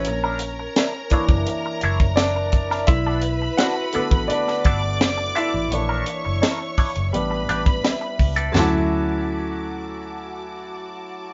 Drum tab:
HH |x-x-x-x-x-x-x-x-|x-x-x-x-x-x-x-x-|x-x-x-oxx-x-x-ox|----------------|
SD |----o-------o--o|----o----o--o---|----o-------o---|o---------------|
FT |----------------|----------------|----------------|o---------------|
BD |------oo---o--o-|o------o--o-----|------o----o--o-|----------------|